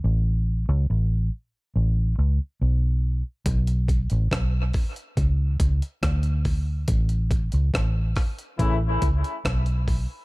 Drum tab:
HH |----------------|xxxxx-oxx-xxxxo-|xxxxx-oxx-xxxxo-|
SD |----------------|----r-------r---|----r-r-----r---|
BD |----------------|o-o-o-o-o-o-o-o-|o-o-o-o-o-o-o-o-|